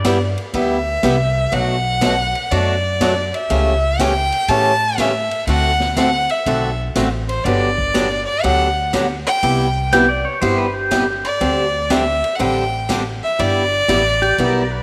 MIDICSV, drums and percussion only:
0, 0, Header, 1, 2, 480
1, 0, Start_track
1, 0, Key_signature, 1, "major"
1, 0, Tempo, 494641
1, 1476, Time_signature, 4, 2, 24, 8
1, 14389, End_track
2, 0, Start_track
2, 0, Title_t, "Drums"
2, 42, Note_on_c, 9, 36, 22
2, 43, Note_on_c, 9, 38, 64
2, 43, Note_on_c, 9, 44, 67
2, 43, Note_on_c, 9, 51, 78
2, 139, Note_off_c, 9, 36, 0
2, 140, Note_off_c, 9, 38, 0
2, 140, Note_off_c, 9, 44, 0
2, 140, Note_off_c, 9, 51, 0
2, 364, Note_on_c, 9, 51, 41
2, 461, Note_off_c, 9, 51, 0
2, 520, Note_on_c, 9, 51, 54
2, 521, Note_on_c, 9, 36, 18
2, 617, Note_off_c, 9, 51, 0
2, 618, Note_off_c, 9, 36, 0
2, 1000, Note_on_c, 9, 38, 68
2, 1000, Note_on_c, 9, 44, 62
2, 1000, Note_on_c, 9, 51, 67
2, 1001, Note_on_c, 9, 36, 19
2, 1097, Note_off_c, 9, 38, 0
2, 1097, Note_off_c, 9, 44, 0
2, 1097, Note_off_c, 9, 51, 0
2, 1098, Note_off_c, 9, 36, 0
2, 1479, Note_on_c, 9, 36, 16
2, 1479, Note_on_c, 9, 51, 50
2, 1576, Note_off_c, 9, 36, 0
2, 1576, Note_off_c, 9, 51, 0
2, 1958, Note_on_c, 9, 38, 73
2, 1958, Note_on_c, 9, 44, 57
2, 1958, Note_on_c, 9, 51, 64
2, 1959, Note_on_c, 9, 36, 29
2, 2055, Note_off_c, 9, 38, 0
2, 2055, Note_off_c, 9, 44, 0
2, 2055, Note_off_c, 9, 51, 0
2, 2056, Note_off_c, 9, 36, 0
2, 2282, Note_on_c, 9, 51, 41
2, 2379, Note_off_c, 9, 51, 0
2, 2438, Note_on_c, 9, 36, 22
2, 2439, Note_on_c, 9, 51, 55
2, 2535, Note_off_c, 9, 36, 0
2, 2536, Note_off_c, 9, 51, 0
2, 2917, Note_on_c, 9, 36, 24
2, 2918, Note_on_c, 9, 38, 68
2, 2918, Note_on_c, 9, 44, 58
2, 2918, Note_on_c, 9, 51, 68
2, 3014, Note_off_c, 9, 36, 0
2, 3015, Note_off_c, 9, 38, 0
2, 3015, Note_off_c, 9, 44, 0
2, 3015, Note_off_c, 9, 51, 0
2, 3241, Note_on_c, 9, 51, 44
2, 3338, Note_off_c, 9, 51, 0
2, 3395, Note_on_c, 9, 36, 19
2, 3395, Note_on_c, 9, 51, 60
2, 3492, Note_off_c, 9, 36, 0
2, 3492, Note_off_c, 9, 51, 0
2, 3874, Note_on_c, 9, 36, 28
2, 3875, Note_on_c, 9, 38, 68
2, 3875, Note_on_c, 9, 44, 50
2, 3875, Note_on_c, 9, 51, 69
2, 3971, Note_off_c, 9, 36, 0
2, 3972, Note_off_c, 9, 38, 0
2, 3972, Note_off_c, 9, 44, 0
2, 3972, Note_off_c, 9, 51, 0
2, 4194, Note_on_c, 9, 51, 47
2, 4291, Note_off_c, 9, 51, 0
2, 4349, Note_on_c, 9, 51, 63
2, 4352, Note_on_c, 9, 36, 20
2, 4446, Note_off_c, 9, 51, 0
2, 4449, Note_off_c, 9, 36, 0
2, 4831, Note_on_c, 9, 38, 69
2, 4831, Note_on_c, 9, 44, 57
2, 4831, Note_on_c, 9, 51, 74
2, 4832, Note_on_c, 9, 36, 19
2, 4928, Note_off_c, 9, 38, 0
2, 4928, Note_off_c, 9, 44, 0
2, 4928, Note_off_c, 9, 51, 0
2, 4929, Note_off_c, 9, 36, 0
2, 5154, Note_on_c, 9, 51, 46
2, 5251, Note_off_c, 9, 51, 0
2, 5310, Note_on_c, 9, 36, 19
2, 5311, Note_on_c, 9, 51, 61
2, 5407, Note_off_c, 9, 36, 0
2, 5408, Note_off_c, 9, 51, 0
2, 5630, Note_on_c, 9, 38, 56
2, 5727, Note_off_c, 9, 38, 0
2, 5787, Note_on_c, 9, 38, 67
2, 5787, Note_on_c, 9, 44, 58
2, 5787, Note_on_c, 9, 51, 67
2, 5789, Note_on_c, 9, 36, 21
2, 5884, Note_off_c, 9, 38, 0
2, 5884, Note_off_c, 9, 44, 0
2, 5884, Note_off_c, 9, 51, 0
2, 5886, Note_off_c, 9, 36, 0
2, 6108, Note_on_c, 9, 51, 45
2, 6205, Note_off_c, 9, 51, 0
2, 6268, Note_on_c, 9, 36, 25
2, 6271, Note_on_c, 9, 51, 58
2, 6365, Note_off_c, 9, 36, 0
2, 6368, Note_off_c, 9, 51, 0
2, 6748, Note_on_c, 9, 38, 70
2, 6748, Note_on_c, 9, 44, 60
2, 6748, Note_on_c, 9, 51, 75
2, 6749, Note_on_c, 9, 36, 21
2, 6845, Note_off_c, 9, 38, 0
2, 6845, Note_off_c, 9, 44, 0
2, 6845, Note_off_c, 9, 51, 0
2, 6846, Note_off_c, 9, 36, 0
2, 7075, Note_on_c, 9, 51, 48
2, 7172, Note_off_c, 9, 51, 0
2, 7230, Note_on_c, 9, 36, 23
2, 7235, Note_on_c, 9, 51, 56
2, 7327, Note_off_c, 9, 36, 0
2, 7332, Note_off_c, 9, 51, 0
2, 7554, Note_on_c, 9, 36, 44
2, 7651, Note_off_c, 9, 36, 0
2, 7710, Note_on_c, 9, 36, 21
2, 7714, Note_on_c, 9, 38, 74
2, 7714, Note_on_c, 9, 44, 54
2, 7714, Note_on_c, 9, 51, 74
2, 7807, Note_off_c, 9, 36, 0
2, 7811, Note_off_c, 9, 38, 0
2, 7811, Note_off_c, 9, 44, 0
2, 7811, Note_off_c, 9, 51, 0
2, 8190, Note_on_c, 9, 36, 18
2, 8191, Note_on_c, 9, 51, 54
2, 8287, Note_off_c, 9, 36, 0
2, 8288, Note_off_c, 9, 51, 0
2, 8670, Note_on_c, 9, 36, 26
2, 8671, Note_on_c, 9, 38, 72
2, 8671, Note_on_c, 9, 44, 62
2, 8671, Note_on_c, 9, 51, 73
2, 8767, Note_off_c, 9, 36, 0
2, 8768, Note_off_c, 9, 38, 0
2, 8768, Note_off_c, 9, 44, 0
2, 8768, Note_off_c, 9, 51, 0
2, 8994, Note_on_c, 9, 51, 45
2, 9091, Note_off_c, 9, 51, 0
2, 9149, Note_on_c, 9, 51, 56
2, 9150, Note_on_c, 9, 36, 23
2, 9246, Note_off_c, 9, 51, 0
2, 9247, Note_off_c, 9, 36, 0
2, 9631, Note_on_c, 9, 36, 24
2, 9634, Note_on_c, 9, 38, 64
2, 9634, Note_on_c, 9, 44, 62
2, 9634, Note_on_c, 9, 51, 71
2, 9728, Note_off_c, 9, 36, 0
2, 9731, Note_off_c, 9, 38, 0
2, 9731, Note_off_c, 9, 44, 0
2, 9731, Note_off_c, 9, 51, 0
2, 10112, Note_on_c, 9, 36, 19
2, 10115, Note_on_c, 9, 51, 57
2, 10209, Note_off_c, 9, 36, 0
2, 10212, Note_off_c, 9, 51, 0
2, 10589, Note_on_c, 9, 38, 71
2, 10589, Note_on_c, 9, 44, 60
2, 10589, Note_on_c, 9, 51, 70
2, 10591, Note_on_c, 9, 36, 19
2, 10687, Note_off_c, 9, 38, 0
2, 10687, Note_off_c, 9, 44, 0
2, 10687, Note_off_c, 9, 51, 0
2, 10688, Note_off_c, 9, 36, 0
2, 10914, Note_on_c, 9, 51, 44
2, 11011, Note_off_c, 9, 51, 0
2, 11071, Note_on_c, 9, 51, 59
2, 11072, Note_on_c, 9, 36, 16
2, 11168, Note_off_c, 9, 51, 0
2, 11169, Note_off_c, 9, 36, 0
2, 11551, Note_on_c, 9, 38, 69
2, 11551, Note_on_c, 9, 44, 62
2, 11551, Note_on_c, 9, 51, 61
2, 11553, Note_on_c, 9, 36, 27
2, 11648, Note_off_c, 9, 38, 0
2, 11648, Note_off_c, 9, 44, 0
2, 11648, Note_off_c, 9, 51, 0
2, 11650, Note_off_c, 9, 36, 0
2, 11876, Note_on_c, 9, 51, 45
2, 11973, Note_off_c, 9, 51, 0
2, 12032, Note_on_c, 9, 51, 62
2, 12033, Note_on_c, 9, 36, 20
2, 12129, Note_off_c, 9, 51, 0
2, 12130, Note_off_c, 9, 36, 0
2, 12513, Note_on_c, 9, 38, 72
2, 12513, Note_on_c, 9, 44, 58
2, 12513, Note_on_c, 9, 51, 72
2, 12514, Note_on_c, 9, 36, 24
2, 12610, Note_off_c, 9, 38, 0
2, 12610, Note_off_c, 9, 44, 0
2, 12610, Note_off_c, 9, 51, 0
2, 12611, Note_off_c, 9, 36, 0
2, 12996, Note_on_c, 9, 36, 19
2, 12998, Note_on_c, 9, 51, 63
2, 13094, Note_off_c, 9, 36, 0
2, 13095, Note_off_c, 9, 51, 0
2, 13476, Note_on_c, 9, 36, 26
2, 13478, Note_on_c, 9, 38, 66
2, 13478, Note_on_c, 9, 44, 52
2, 13478, Note_on_c, 9, 51, 69
2, 13573, Note_off_c, 9, 36, 0
2, 13575, Note_off_c, 9, 38, 0
2, 13575, Note_off_c, 9, 44, 0
2, 13575, Note_off_c, 9, 51, 0
2, 13802, Note_on_c, 9, 51, 41
2, 13899, Note_off_c, 9, 51, 0
2, 13957, Note_on_c, 9, 36, 21
2, 13957, Note_on_c, 9, 51, 60
2, 14054, Note_off_c, 9, 36, 0
2, 14054, Note_off_c, 9, 51, 0
2, 14389, End_track
0, 0, End_of_file